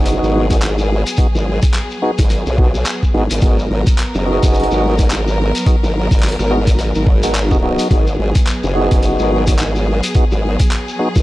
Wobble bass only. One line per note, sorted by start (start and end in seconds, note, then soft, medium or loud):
0.00 0.20 F#1 medium
0.23 1.04 G#1 medium
1.35 1.60 G#1 medium
2.19 2.44 G#1 medium
2.47 2.84 B1 loud
3.14 3.28 G#1 medium
3.31 3.40 G#1 medium
3.42 3.69 G#1 loud
3.70 3.84 G#1 loud
4.15 4.40 F#1 medium
4.43 4.68 F#1 medium
4.71 5.53 G#1 loud
5.83 6.09 G#1 loud
6.11 6.37 G#1 medium
6.39 6.93 G#1 loud
6.96 7.77 G#1 medium
7.91 8.17 G#1 medium
8.19 8.33 G#1 loud
8.64 8.89 F#1 loud
8.92 9.17 F#1 medium
9.20 10.01 G#1 loud
10.32 10.57 G#1 medium
11.16 11.22 G#1 medium